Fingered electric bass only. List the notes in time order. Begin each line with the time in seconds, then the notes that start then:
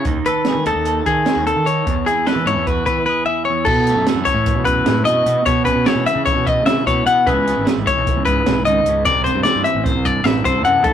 0.05 D#2
0.55 D#3
0.66 D#2
0.75 D#2
1.06 D#3
1.36 D#2
1.56 D#3
1.87 E2
2.36 E3
2.46 G#2
2.55 E2
2.86 E3
3.67 B2
3.96 F#2
4.14 F#2
4.34 A2
4.56 B2
4.86 A2
5.05 B2
5.26 B2
5.46 B2
5.75 B2
5.95 B2
6.15 C#3
6.36 B2
6.65 C#3
6.87 B2
7.06 B2
7.27 C#2
7.57 G#1
7.76 G#1
7.96 B1
8.16 C#2
8.47 B1
8.66 C#2
8.85 C#2
9.06 C2
9.34 G2
9.55 G2
9.75 A1
9.95 C2
10.24 A1
10.45 C2
10.65 F#2
10.85 B1